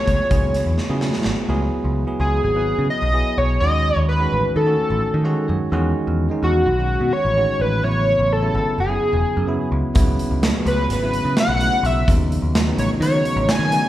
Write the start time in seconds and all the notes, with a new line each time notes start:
Already playing: F#3 B3 E4 G#4 C#5
0.07 C#2, kick, closed hi-hat
0.29 C#2 F#3 B3 E4 G#4, kick, closed hi-hat
0.54 snare, closed hi-hat
0.66 E2
0.78 snare
0.89 C#3 F#3 B3 E4 G#4
1.01 snare
1.13 snare
1.24 G#1, snare
1.48 C#2 F#3 B3 E4 G#4
1.84 C#2
2.07 F#3 B3 E4 G#4
2.20 C#2 G#4
2.43 G#1 G#4
2.54 F#3 B3 E4 B4
2.79 C#3
2.90 D#5
3.02 B1
3.13 F#3 B3 E4 G#4
3.38 B1 C#5
3.60 D#2 D#3 G#3 C#4 F#4 D#5
3.96 D#2
4.08 B4
4.19 D#3 G#3 C#4 F#4
4.32 A1
4.56 D#3 A4
4.65 D#3 A3 C#4 F#4
4.90 A1
5.14 D#3
5.23 D#3 G#3 C#4 F#4 F#5
5.48 F#2 C#5
5.72 E2 D#3 G#3 C#4 F#4
6.07 E2
6.29 D#3 G#3 C#4 D#4
6.43 E2 F#4
6.66 B1 F#4
6.79 D#3 G#3 C#4 F#4
7.01 B2
7.13 C#5
7.25 A1
7.37 D#3 G#3 C#4 F#4
7.60 A1 B4
7.83 A1 C#3 F#3 B3 E4 C#5
8.19 A1
8.33 A4
8.41 C#3 F#3 B3 E4
8.55 G#1
8.78 F#1 G#4
8.88 C#3 F#3 B3 E4
9.13 E1
9.37 F#2
9.47 C#3 F#3 B3 E4
9.72 C#2
9.94 C#2 C#3 F#3 B3 E4, kick, closed hi-hat
10.19 closed hi-hat
10.31 C#2
10.43 snare, closed hi-hat
10.53 C#3 F#3 B3 C#4
10.66 C#2 B4, closed hi-hat
10.89 G#1 B4, snare, closed hi-hat
11.02 C#3 F#3 B3 E4
11.13 closed hi-hat
11.25 C#3
11.37 F#5, snare, closed hi-hat
11.48 B1
11.59 C#3 F#3 B3 E4, closed hi-hat
11.83 B1 E5, closed hi-hat
12.08 D#2 C#3 F#3 B3 D#4, kick, closed hi-hat
12.32 closed hi-hat
12.42 D#2
12.55 snare, closed hi-hat
12.66 C#3 F#3 B3 D#4
12.78 A1 C#5, closed hi-hat
13.00 D#3 C#5, closed hi-hat
13.12 C#3 F#3 B3 D#4
13.25 closed hi-hat
13.36 A1
13.49 G#5, snare, closed hi-hat
13.59 D#3
13.71 C#3 F#3 B3 D#4, closed hi-hat